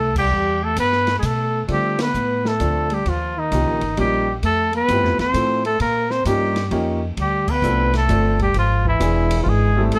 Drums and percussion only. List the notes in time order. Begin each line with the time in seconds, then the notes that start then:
0.16 kick, crash
0.76 kick, hi-hat pedal, ride
0.92 snare
1.07 snare, ride
1.23 kick, hi-hat pedal, ride
1.68 kick, ride
1.99 snare, ride
2.14 hi-hat pedal
2.45 snare
2.60 kick, hi-hat pedal, ride
2.90 ride
3.06 kick, ride
3.52 kick, hi-hat pedal, ride
3.81 ride
3.97 kick, ride
4.43 kick, ride
4.73 ride
4.88 kick, hi-hat pedal, ride
5.05 snare
5.19 snare, ride
5.34 kick, hi-hat pedal, ride
5.65 ride
5.80 kick, ride
6.11 snare
6.25 kick, hi-hat pedal, ride
6.56 snare, ride
6.71 kick, ride
7.17 kick, ride
7.48 kick, crash
7.63 hi-hat pedal
7.94 snare, ride
8.09 kick, hi-hat pedal, ride
8.39 kick, ride
8.54 ride
8.85 kick
9.00 hi-hat pedal, ride
9.31 ride
9.46 kick
9.92 kick, ride